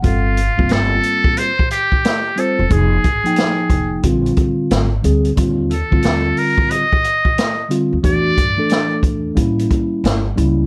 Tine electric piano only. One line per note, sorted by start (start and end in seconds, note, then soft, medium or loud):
0.00 0.39 G3 medium
0.00 0.39 C4 medium
0.00 0.24 F#5 medium
0.04 0.40 F4 medium
0.04 0.40 A4 medium
0.58 1.49 G3 medium
0.58 1.51 A#3 medium
0.58 1.50 C4 medium
0.58 1.50 F4 medium
2.36 2.63 G3 medium
2.36 2.63 C4 medium
2.36 2.64 F4 medium
2.36 2.64 C5 medium
2.69 3.05 F3 medium
2.69 3.06 A#3 medium
2.69 3.06 D#4 medium
2.69 3.07 G#4 medium
3.24 4.03 F3 medium
3.24 4.04 A#3 medium
3.24 4.04 D#4 medium
3.24 4.04 G5 medium
4.03 4.87 D3 medium
4.03 4.87 G3 medium
4.03 4.88 C4 medium
4.03 4.88 F4 medium
5.03 5.29 D3 medium
5.03 5.30 G3 medium
5.03 5.30 C4 medium
5.03 5.31 G#4 medium
5.35 5.72 D3 medium
5.35 5.72 G3 medium
5.35 5.73 C4 medium
5.35 5.73 F4 medium
5.90 6.83 D3 medium
5.90 6.83 G3 medium
5.90 6.83 C4 medium
5.90 6.84 F4 medium
7.69 7.96 D3 medium
7.69 7.96 G3 medium
7.69 7.97 C4 medium
7.69 7.97 F4 medium
8.02 8.38 E3 medium
8.02 8.39 A3 medium
8.02 8.39 D4 medium
8.02 8.40 F#4 medium
8.57 9.36 E3 medium
8.57 9.37 A3 medium
8.57 9.37 D4 medium
8.57 9.38 A4 medium
9.35 10.20 G3 medium
9.35 10.20 A#3 medium
9.35 10.21 C#4 medium
9.35 10.21 E4 loud
10.36 10.63 G3 medium
10.36 10.63 A#3 medium
10.36 10.63 C#4 medium
10.36 10.64 E4 medium